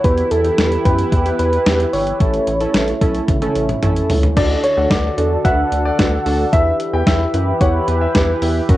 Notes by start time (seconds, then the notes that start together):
Already playing: E4
0.04 E2 E3 B3 E4 G4 B4, kick, closed hi-hat
0.18 closed hi-hat
0.31 E2 A4, closed hi-hat
0.44 B3 E4 G4, closed hi-hat
0.58 E2, snare, closed hi-hat
0.72 closed hi-hat
0.85 F#2 B3 E4 G4 B4, kick, closed hi-hat
0.99 closed hi-hat
1.12 E2, kick, closed hi-hat
1.26 B3 E4 G4, closed hi-hat
1.39 E2 B4, closed hi-hat
1.53 closed hi-hat
1.66 E2 B3 E4 G4, snare, closed hi-hat
1.80 closed hi-hat
1.93 G1 C#5, open hi-hat
2.07 closed hi-hat
2.20 A1 A3 C#4 E4 A4, kick, closed hi-hat
2.34 closed hi-hat
2.47 A1, closed hi-hat
2.61 C#4 E4 A4, closed hi-hat
2.74 A1, snare, closed hi-hat
2.88 closed hi-hat
3.01 B1 C#4 E4 A4, kick, closed hi-hat
3.15 closed hi-hat
3.28 A1, kick, closed hi-hat, high tom
3.42 C#4 E4 A4, closed hi-hat, high tom
3.56 A1, closed hi-hat
3.69 closed hi-hat, mid tom
3.83 A1 C#4 E4 A4, closed hi-hat, mid tom
3.96 closed hi-hat
4.10 C#2, floor tom, open hi-hat
4.23 closed hi-hat, floor tom
4.37 D2 D3 D4 F#4 A4 D5, kick, closed hi-hat, crash
4.64 C#5, closed hi-hat
4.77 D2 D4 F#4 A4 F#5
4.90 D2 D5, kick, snare, closed hi-hat
5.18 E2 D4 F#4 A4, closed hi-hat
5.45 D2 D4 F#4 B4 E5 F#5, kick, closed hi-hat
5.72 D2, closed hi-hat
5.85 D5
5.99 D2 D4 F#4 A4, kick, snare, closed hi-hat
6.26 D2 D4 F#4 A4, open hi-hat
6.53 E2 E3 E4 G4 B4 E5, kick, closed hi-hat
6.80 closed hi-hat
6.93 E2 E4 G4 B4 G5
7.07 E2 E5, kick, snare, closed hi-hat
7.34 F#2 E4 G4 B4, closed hi-hat
7.61 E2 E4 G4 B4 C#5 F#5, kick, closed hi-hat
7.88 E2 B4, closed hi-hat
8.01 E5
8.15 E2 E4 G4 B4, kick, snare, closed hi-hat
8.42 E2 E4 G4 B4, open hi-hat
8.69 F#2 A#3 C#4 F#4 A#4, kick, closed hi-hat